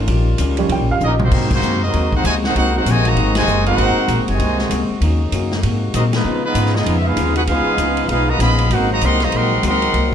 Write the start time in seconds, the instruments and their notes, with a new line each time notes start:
Already playing: trombone section D#3 F4
0.07 upright bass A#1, hollow-body jazz guitar D#3 C#4 F4 G4, trombone section G3 C#4, ride
0.38 upright bass C#2, hollow-body jazz guitar D#3 C#4 F4 G4, hi-hat pedal, ride
0.57 upright piano F3 G3 C#4, ride
0.69 upright bass C2, hollow-body jazz guitar D#3 C#4 F4 G4, upright piano G5, ride
0.80 upright bass A#1
0.90 upright bass G1, upright piano F5
1.00 upright bass A#1, hollow-body jazz guitar D#3 C#4 F4 G4, trombone section G3 A#3, trumpet section C#4 G4 A#4 D#5, hi-hat pedal
1.05 trombone section D#4, upright piano D#5
1.19 trombone section D#3 F#3 C4, trumpet section A#3 D#4 F#4 C5, mid tom
1.31 upright bass G#2, hollow-body jazz guitar G#2 F#3 A#3 C4, trombone section C3 G#3 A#3 F#4, kick, crash
1.51 trombone section D#3 F#3 C4, trumpet section A#3 D#4 F#4 C5, kick, crash
1.62 upright bass F#2, hollow-body jazz guitar G#2 F#3 A#3 C4, hi-hat pedal
1.84 trombone section F#3 C4 D#4, trumpet section C4 F#4 A#4 D#5
1.93 upright bass D#2, hollow-body jazz guitar G#2 F#3 A#3 C4, ride
2.12 trombone section C4 D#4 F#4, trumpet section D#4 A#4 C5 F#5, kick
2.23 upright bass C#2, hollow-body jazz guitar G#2 F#3 A#3 C4, trombone section C3 D#3 G#3, trumpet section F#4 C5 D#5 G#5, hi-hat pedal, ride
2.44 trombone section C4 D#4 F#4, trumpet section D#4 A#4 C5 F#5, snare
2.55 upright bass C2, hollow-body jazz guitar G#2 F#3 A#3 C4, trombone section C4 D#4 F#4, trumpet section D#4 A#4 C5 F#5, ride
2.74 trombone section C4 D#4 F#4, trumpet section D#4 A#4 C5 F#5
2.85 upright bass A#1, hollow-body jazz guitar G#2 F#3 A#3 C4, trombone section C3 D#3 G#3, trumpet section F#4 G#5, hi-hat pedal, ride
2.89 trumpet section C5 D#5
3.04 trombone section D#3 F#3 A#3, trumpet section F#4 C5 D#5 A#5, ride
3.15 upright bass G#1, hollow-body jazz guitar G#2 F#3 A#3 C4, trombone section C4, ride
3.35 trombone section C3 D#3 G#3, trumpet section F#4 C5 D#5 G#5, snare, ride
3.46 upright bass F#1, hollow-body jazz guitar G#2 F#3 A#3 C4, hi-hat pedal
3.65 trombone section C4 D#4 F#4, trumpet section D#4 A#4 C5 F#5, ride
3.76 upright bass G#1, hollow-body jazz guitar G#2 F#3 A#3 C4, ride
3.96 muted upright bass stroke
4.07 upright bass A#1, hollow-body jazz guitar G#2 F#3 A#3 C4, hi-hat pedal, ride
4.18 upright bass G#1
4.28 upright bass F#1, trombone section C3 D#3 G#3, trumpet section F#4 C5 D#5 G#5, ride
4.39 upright bass C2, hollow-body jazz guitar G#2 F#3 A#3 C4, ride
4.59 snare
4.70 upright bass C#2, hollow-body jazz guitar G#2 F#3 A#3 C4, hi-hat pedal, ride
4.89 muted upright bass stroke
5.01 upright bass D#2, trombone section C#3 F#3 A#3 D#4, hollow-body jazz guitar D#3 A#3 C#4 F#4, ride
5.32 upright bass F#2, hollow-body jazz guitar D#3 A#3 C#4 F#4, hi-hat pedal, ride
5.51 snare
5.62 hollow-body jazz guitar G#2 F#3 A#3 C4, upright bass G#2, trombone section C3 G#3 A#3 F#4, ride
5.94 hollow-body jazz guitar G#2 F#3 A#3 C4, upright bass A#2, trombone section F#3 C4 D#4, trumpet section C4 F#4 A#4 D#5, hi-hat pedal, ride
6.13 trombone section F3 G#3 B3, trumpet section G#3 D#4 F4 B4, snare, ride
6.23 trombone section C#3 F3 B3 D#4, hollow-body jazz guitar C#3 B3 D#4, upright bass C#3
6.28 hollow-body jazz guitar F4
6.44 trombone section F3 G#3 B3, trumpet section G#3 D#4 F4 B4
6.54 upright bass G#2, hollow-body jazz guitar C#3 B3 D#4 F4, hi-hat pedal, ride
6.66 snare
6.74 trombone section G#3 B3 D#4, trumpet section B3 F4 G#4 D#5, snare
6.85 upright bass F2, hollow-body jazz guitar C#3 B3 D#4 F4, ride
6.98 trumpet section E5
7.05 trombone section G#3 B3 F4, trumpet section D#4 G#4 B4 F5
7.16 upright bass D#2, hollow-body jazz guitar C#3 B3 D#4 F4, hi-hat pedal, ride
7.36 trumpet section D#4 G#4 B4 F#5, trombone section F#4, ride
7.47 upright bass C#2, hollow-body jazz guitar C#3 B3 D#4, trombone section G#3 B3 F4, trumpet section D#4 G#4 B4 F5, ride
7.52 hollow-body jazz guitar F4
7.66 muted upright bass stroke
7.77 upright bass C#2, hollow-body jazz guitar C#3 B3 D#4, hi-hat pedal, ride
7.82 hollow-body jazz guitar F4
7.97 ride
8.08 upright bass B1, hollow-body jazz guitar C#3 B3 D#4 F4, trombone section G#3 B3 F4, trumpet section D#4 G#4 B4 F5, ride
8.29 trombone section A#3, trumpet section F#4 B4 D#5 A#5
8.39 upright bass A#1, hollow-body jazz guitar C#3 B3 D#4, trombone section F3 G#3 B3, trumpet section G#4 D#5 F5 B5, hi-hat pedal, ride
8.43 hollow-body jazz guitar F4
8.58 ride
8.70 upright bass G#1, hollow-body jazz guitar G#2 F#3 A#3, trombone section C3 G#3 A#3 C4 D#4 F#4, trumpet section D#4 A#4 C5 F#5, ride
8.75 hollow-body jazz guitar C4
8.90 trombone section D#3 F#3 A#3, trumpet section F#4 C5 D#5 A#5
9.01 upright bass C2, hollow-body jazz guitar G#2 F#3 A#3 C4, trombone section D#3 F#3 C4, trumpet section A#4 D#5 F#5 C6, hi-hat pedal, ride
9.20 trombone section D#3 F#3 A#3, trumpet section C5 D#5 A#5, snare, ride
9.24 trumpet section F#4
9.32 upright bass A#1, hollow-body jazz guitar G#2 F#3 A#3 C4, trombone section D#3 F#3 C4, trumpet section A#4 D#5 F#5 C6, ride
9.63 upright bass C#2, hollow-body jazz guitar G#2 F#3 A#3 C4, trombone section D#3 F#3 C4, trumpet section A#4 D#5 C6, hi-hat pedal, ride
9.67 trumpet section F#5
9.82 ride
9.93 upright bass C2, hollow-body jazz guitar C3 F#3 A#3 D#4, trombone section F#3 D#4, ride